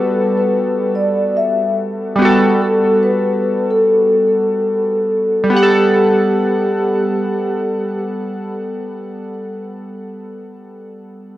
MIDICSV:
0, 0, Header, 1, 3, 480
1, 0, Start_track
1, 0, Key_signature, 1, "major"
1, 0, Tempo, 833333
1, 1257, Time_signature, 4, 2, 24, 8
1, 6551, End_track
2, 0, Start_track
2, 0, Title_t, "Vibraphone"
2, 0, Program_c, 0, 11
2, 0, Note_on_c, 0, 71, 73
2, 189, Note_off_c, 0, 71, 0
2, 216, Note_on_c, 0, 71, 63
2, 523, Note_off_c, 0, 71, 0
2, 548, Note_on_c, 0, 74, 60
2, 783, Note_off_c, 0, 74, 0
2, 786, Note_on_c, 0, 76, 69
2, 999, Note_off_c, 0, 76, 0
2, 1508, Note_on_c, 0, 69, 74
2, 1720, Note_off_c, 0, 69, 0
2, 1745, Note_on_c, 0, 71, 78
2, 2107, Note_off_c, 0, 71, 0
2, 2134, Note_on_c, 0, 69, 69
2, 3158, Note_off_c, 0, 69, 0
2, 3188, Note_on_c, 0, 67, 75
2, 4600, Note_off_c, 0, 67, 0
2, 6551, End_track
3, 0, Start_track
3, 0, Title_t, "Synth keys"
3, 0, Program_c, 1, 88
3, 0, Control_c, 1, 64, 127
3, 0, Note_on_c, 1, 55, 75
3, 0, Note_on_c, 1, 59, 70
3, 0, Note_on_c, 1, 66, 64
3, 0, Note_on_c, 1, 69, 79
3, 1230, Note_off_c, 1, 55, 0
3, 1240, Note_off_c, 1, 59, 0
3, 1242, Note_on_c, 1, 55, 67
3, 1249, Note_off_c, 1, 66, 0
3, 1259, Note_off_c, 1, 69, 0
3, 1260, Note_on_c, 1, 59, 61
3, 1278, Note_on_c, 1, 66, 62
3, 1296, Note_on_c, 1, 69, 71
3, 3126, Note_off_c, 1, 55, 0
3, 3133, Note_on_c, 1, 55, 66
3, 3156, Note_off_c, 1, 59, 0
3, 3165, Note_off_c, 1, 66, 0
3, 3169, Note_on_c, 1, 59, 62
3, 3174, Note_off_c, 1, 69, 0
3, 3186, Control_c, 1, 64, 0
3, 3206, Note_on_c, 1, 78, 60
3, 3242, Note_on_c, 1, 69, 78
3, 3286, Control_c, 1, 64, 127
3, 5202, Note_off_c, 1, 55, 0
3, 5239, Note_off_c, 1, 59, 0
3, 5275, Note_off_c, 1, 78, 0
3, 5312, Note_off_c, 1, 69, 0
3, 6546, Control_c, 1, 64, 0
3, 6551, End_track
0, 0, End_of_file